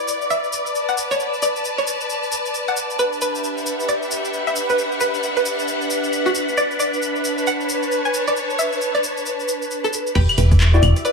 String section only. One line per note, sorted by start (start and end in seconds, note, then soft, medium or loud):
0.00 0.27 E4 medium
0.00 3.61 B4 medium
0.00 3.81 D5 medium
0.00 0.16 F#5 medium
0.71 4.31 A5 medium
2.99 10.16 D4 medium
3.14 6.57 G4 medium
3.14 7.81 E5 medium
3.57 7.32 F#5 medium
7.02 10.16 B4 medium
7.16 10.16 C#5 medium
7.27 10.16 A5 medium